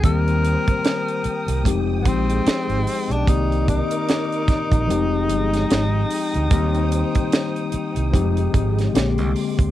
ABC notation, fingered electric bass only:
X:1
M:4/4
L:1/16
Q:"Swing 16ths" 1/4=74
K:Fdor
V:1 name="Fingered electric bass" clef=bass
E,,3 z4 C,, F,,,2 B,,,2 z A,,, z _C,, | C,,3 z4 B,,, F,,,2 G,,,2 A,,,2 z D,, | E,,3 z4 C,, F,,,2 A,,,2 B,,, C,, z D,, |]